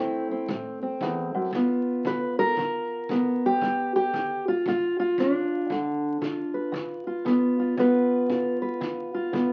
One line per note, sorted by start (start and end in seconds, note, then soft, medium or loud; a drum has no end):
0.00 0.45 D3 medium
0.00 1.51 A3 medium
0.00 0.29 C4 medium
0.00 0.50 E4 loud
0.31 0.81 C4 medium
0.49 0.97 A2 medium
0.49 kick medium
0.83 1.51 C4 medium
1.01 1.34 E2 medium
1.01 kick medium
1.34 1.53 F#2 medium
1.53 2.02 G2 medium
1.53 3.10 B3 medium
1.53 3.45 F4 medium
1.53 kick medium
2.05 2.54 D3 medium
2.05 2.38 B4 medium
2.05 kick medium
2.39 3.43 A#4 loud
2.57 3.06 D3 medium
2.57 kick medium
3.09 3.58 D3 medium
3.09 4.51 B3 soft
3.09 kick medium
3.46 3.95 G4 medium
3.62 4.10 G2 medium
3.62 kick medium
3.96 4.47 G4 loud
4.14 4.62 D3 medium
4.14 kick medium
4.48 4.67 F4 medium
4.66 5.15 D3 medium
4.66 4.98 F4 medium
4.66 kick medium
5.00 5.70 F4 medium
5.18 5.67 D3 medium
5.18 6.75 D4 medium
5.18 kick medium
5.70 6.18 G2 medium
5.70 6.20 D3 medium
5.70 kick medium
6.21 6.70 D3 medium
6.21 7.06 F4 soft
6.21 kick medium
6.54 7.75 B4 soft
6.72 7.21 D3 medium
6.72 kick medium
7.07 7.58 F4 soft
7.25 7.73 D3 medium
7.25 7.75 B3 soft
7.25 kick medium
7.59 7.76 F4 soft
7.77 8.25 G2 medium
7.77 9.32 B3 medium
7.77 8.29 F4 medium
7.77 8.61 B4 medium
7.77 kick medium
8.30 8.78 D3 medium
8.30 9.13 F4 medium
8.30 kick medium
8.62 9.53 B4 medium
8.81 9.29 D3 medium
8.81 kick medium
9.14 9.53 F4 medium
9.33 9.53 D3 medium
9.33 9.53 B3 medium
9.33 kick medium